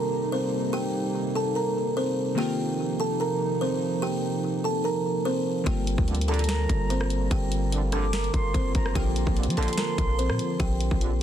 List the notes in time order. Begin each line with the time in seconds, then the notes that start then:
Already playing: C3 D#3 G3 A#3 C4 D#4 G4 A#4 A#5
0.32 C4 C5
0.73 G4 G5
1.35 A4 A5
1.55 A#4 A#5
1.97 C4 C5
2.35 C3 D#3 F3 A#3 C4 D#4 G4 G5
2.40 F4 A#4
3.00 A4 A5
3.20 A#4 A#5
3.61 C4 C5
4.02 G4 G5
4.64 A4 A5
4.84 A#4 A#5
5.25 C4 C5
5.64 G1 D3 G3 A#3 F4 G4 G5, kick, closed hi-hat
5.68 F4 A#4
5.87 closed hi-hat
5.98 D2, kick
6.08 A#1 G2 D3, closed hi-hat
6.15 closed hi-hat
6.21 closed hi-hat
6.28 A#1 G2 D3 A4 A5 A#5, closed hi-hat
6.34 closed hi-hat
6.39 closed hi-hat
6.44 closed hi-hat
6.49 A#4 A#5, snare, closed hi-hat
6.69 G1, kick, closed hi-hat
6.90 C4 C5, closed hi-hat
7.01 cross-stick
7.10 closed hi-hat
7.31 G1 G4 G5, kick, closed hi-hat
7.52 closed hi-hat
7.72 A#1 G2 D3, closed hi-hat
7.92 A#1 G2 D3 A4 A5 D6, cross-stick, closed hi-hat
8.13 A#4 A#5, snare, closed hi-hat
8.24 closed hi-hat
8.34 G1 C6, kick, closed hi-hat
8.54 G1 C4 C5, kick, closed hi-hat
8.75 G1 A#5, kick, closed hi-hat
8.86 cross-stick
8.93 A#1 D3 F3 A#3 G4 G5, kick, closed hi-hat
8.98 F4 A#4
9.16 closed hi-hat
9.27 A#1, kick
9.36 A#1 F2 D3, closed hi-hat
9.43 F3, closed hi-hat
9.50 closed hi-hat
9.57 A#1 F2 D3 A4 A5 C6, closed hi-hat
9.63 closed hi-hat
9.68 closed hi-hat
9.73 closed hi-hat
9.78 A#4 A#5, snare, closed hi-hat
9.98 A#1, kick, closed hi-hat
10.19 C4 C5, closed hi-hat
10.30 A#2, cross-stick
10.39 closed hi-hat
10.60 A#1 G4 G5, kick, closed hi-hat
10.80 closed hi-hat
10.91 A#1, kick
11.01 A#1 F2 D3, closed hi-hat